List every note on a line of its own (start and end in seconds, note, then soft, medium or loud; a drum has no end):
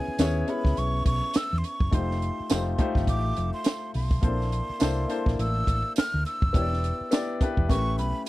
0.00 0.14 B3 medium
0.00 0.15 C#4 medium
0.00 0.18 E4 medium
0.00 0.15 G#4 medium
0.00 0.16 C#5 medium
0.00 0.51 G#5 loud
0.08 muted fingered electric bass stroke medium
0.19 0.42 D#2 medium
0.19 0.46 B3 loud
0.19 0.46 C#4 medium
0.19 0.47 E4 medium
0.19 0.47 G#4 medium
0.19 0.47 C#5 loud
0.19 snare loud
0.19 closed hi-hat medium
0.19 tambourine medium
0.47 1.55 B3 medium
0.47 1.55 C#4 medium
0.47 1.55 E4 medium
0.47 1.56 G#4 medium
0.47 1.56 C#5 medium
0.47 0.80 B5 loud
0.47 closed hi-hat medium
0.65 0.75 C#2 medium
0.65 kick medium
0.65 snare soft
0.77 1.00 B1 loud
0.77 1.06 C#6 loud
0.77 closed hi-hat medium
1.06 1.19 B1 medium
1.06 1.38 C#6 loud
1.06 kick medium
1.06 closed hi-hat medium
1.34 1.60 E6 loud
1.34 muted fingered electric bass stroke soft
1.34 snare loud
1.34 closed hi-hat loud
1.34 tambourine medium
1.53 1.62 E2 medium
1.58 1.67 C6 medium
1.64 1.95 C#6 loud
1.64 closed hi-hat medium
1.80 1.90 F#1 medium
1.80 kick loud
1.91 2.29 F1 loud
1.91 2.45 A3 medium
1.91 2.46 D#4 medium
1.91 2.46 F4 medium
1.91 2.46 G4 medium
1.91 2.47 C5 medium
1.91 2.80 C6 loud
1.91 kick loud
1.91 closed hi-hat medium
2.11 snare soft
2.22 closed hi-hat medium
2.40 muted fingered electric bass stroke medium
2.50 2.74 F1 loud
2.50 2.77 A3 medium
2.50 2.77 D#4 medium
2.50 2.77 F4 medium
2.50 2.77 G4 medium
2.50 2.78 C5 medium
2.50 snare loud
2.50 closed hi-hat medium
2.50 tambourine medium
2.78 3.85 A3 medium
2.78 3.86 D#4 medium
2.78 3.86 F4 medium
2.78 3.86 G4 medium
2.78 3.87 C5 loud
2.78 kick loud
2.78 closed hi-hat medium
2.95 3.05 G1 medium
2.95 kick medium
2.95 snare soft
3.07 3.31 A1 loud
3.07 3.51 D6 loud
3.07 kick medium
3.07 closed hi-hat medium
3.37 3.50 F1 loud
3.37 closed hi-hat medium
3.54 3.92 C6 medium
3.64 snare loud
3.64 closed hi-hat loud
3.64 tambourine medium
3.94 4.18 B1 medium
3.94 5.35 C6 medium
3.94 open hi-hat medium
4.11 kick medium
4.21 4.60 A#1 loud
4.21 4.76 A#3 medium
4.21 4.30 C4 medium
4.21 4.76 E4 medium
4.21 4.76 A4 medium
4.21 4.77 C5 medium
4.21 kick loud
4.21 closed hi-hat medium
4.28 4.79 D4 medium
4.41 snare soft
4.52 closed hi-hat medium
4.70 muted fingered electric bass stroke soft
4.79 5.04 C2 medium
4.79 5.07 A#3 medium
4.79 5.07 D4 medium
4.79 5.07 E4 medium
4.79 5.08 A4 medium
4.79 5.08 C5 loud
4.79 snare loud
4.79 closed hi-hat medium
4.79 tambourine medium
5.08 6.16 A#3 medium
5.08 6.16 D4 medium
5.08 6.16 E4 medium
5.08 6.17 A4 medium
5.08 6.17 C5 loud
5.08 closed hi-hat medium
5.26 5.36 A#1 medium
5.26 kick medium
5.26 snare soft
5.39 5.62 A1 loud
5.39 5.93 E6 loud
5.39 closed hi-hat medium
5.67 5.81 A1 medium
5.67 kick medium
5.67 closed hi-hat medium
5.96 6.24 F6 loud
5.96 muted fingered electric bass stroke medium
5.96 snare loud
5.96 closed hi-hat loud
5.96 tambourine medium
6.14 6.23 D2 medium
6.26 7.39 E6 loud
6.26 closed hi-hat medium
6.42 6.52 F1 medium
6.42 kick loud
6.53 6.91 E1 loud
6.53 7.07 B3 medium
6.53 7.07 D4 medium
6.53 7.07 E4 medium
6.53 7.08 G4 medium
6.53 6.62 C#5 medium
6.53 kick loud
6.53 closed hi-hat medium
6.62 7.11 D5 medium
6.73 snare soft
6.84 closed hi-hat medium
7.01 muted fingered electric bass stroke medium
7.11 7.38 B3 medium
7.11 7.38 D4 medium
7.11 7.39 E4 medium
7.11 7.39 G4 medium
7.11 7.39 D5 loud
7.11 snare loud
7.11 closed hi-hat medium
7.11 tambourine medium
7.41 7.69 B3 medium
7.41 7.69 D4 medium
7.41 7.69 E4 medium
7.41 7.69 G4 medium
7.41 7.70 B4 loud
7.41 muted fingered electric bass stroke soft
7.41 kick loud
7.41 closed hi-hat medium
7.57 7.70 E1 medium
7.57 kick loud
7.69 7.99 A1 loud
7.69 8.29 A3 medium
7.69 8.29 C#4 medium
7.69 8.29 E4 medium
7.69 8.29 G4 medium
7.69 8.29 B4 medium
7.69 7.97 C#6 loud
7.69 kick medium
7.69 closed hi-hat medium
7.99 8.12 B1 loud
7.99 8.25 B5 loud
7.99 closed hi-hat medium